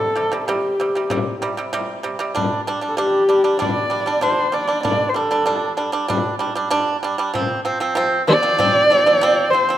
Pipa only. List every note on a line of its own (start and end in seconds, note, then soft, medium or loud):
0.00 0.10 G3 medium
0.16 0.29 C3 medium
0.16 0.29 G3 medium
0.32 0.44 C3 medium
0.32 0.45 G3 medium
0.48 0.73 C3 medium
0.48 0.73 G3 loud
0.80 0.92 C3 medium
0.80 0.93 G3 medium
0.95 1.08 C3 medium
0.95 1.08 G3 medium
1.10 1.35 C3 medium
1.10 1.36 G3 medium
1.42 1.54 C3 medium
1.42 1.54 G3 medium
1.57 1.70 C3 medium
1.57 1.70 G3 medium
1.73 1.98 C3 loud
1.73 1.98 G3 loud
2.03 2.16 C3 medium
2.03 2.16 G3 medium
2.19 2.32 C3 medium
2.19 2.32 G3 medium
2.35 2.60 G3 medium
2.35 2.60 D4 loud
2.67 2.79 G3 medium
2.67 2.80 D4 loud
2.81 2.94 G3 medium
2.81 2.94 D4 medium
2.97 3.22 G3 loud
2.97 3.23 D4 loud
3.29 3.41 G3 medium
3.29 3.41 D4 medium
3.44 3.57 G3 medium
3.44 3.57 D4 medium
3.59 3.84 G3 medium
3.59 3.85 D4 medium
3.90 4.03 G3 medium
3.90 4.03 D4 medium
4.06 4.19 G3 medium
4.06 4.19 D4 medium
4.21 4.47 G3 medium
4.21 4.47 D4 medium
4.52 4.65 G3 medium
4.52 4.66 D4 medium
4.67 4.81 G3 medium
4.67 4.81 D4 medium
4.83 5.09 G3 medium
4.83 5.09 D4 medium
5.14 5.27 G3 medium
5.14 5.28 D4 medium
5.31 5.43 G3 medium
5.31 5.44 D4 medium
5.46 5.71 G3 medium
5.46 5.72 D4 medium
5.77 5.90 G3 medium
5.77 5.90 D4 medium
5.92 6.05 G3 medium
5.92 6.06 D4 loud
6.08 6.34 G3 loud
6.08 6.34 D4 loud
6.39 6.52 G3 medium
6.39 6.53 D4 medium
6.55 6.68 G3 medium
6.55 6.69 D4 medium
6.70 6.96 G3 loud
6.70 6.96 D4 loud
7.03 7.15 G3 medium
7.03 7.16 D4 medium
7.18 7.31 G3 medium
7.18 7.31 D4 medium
7.34 7.59 F3 medium
7.34 7.59 C4 loud
7.65 7.77 F3 medium
7.65 7.78 C4 medium
7.80 7.93 F3 medium
7.80 7.93 C4 loud
7.95 8.21 F3 loud
7.95 8.21 C4 loud
8.27 8.40 F3 medium
8.27 8.40 C4 medium
8.43 8.55 F3 medium
8.43 8.55 C4 medium
8.58 8.84 F3 medium
8.58 8.84 C4 loud
8.90 9.03 F3 medium
8.90 9.03 C4 medium
9.06 9.18 F3 medium
9.06 9.19 C4 medium
9.21 9.46 F3 loud
9.21 9.47 C4 loud
9.53 9.65 F3 medium
9.53 9.66 C4 medium
9.69 9.78 F3 medium
9.69 9.78 C4 medium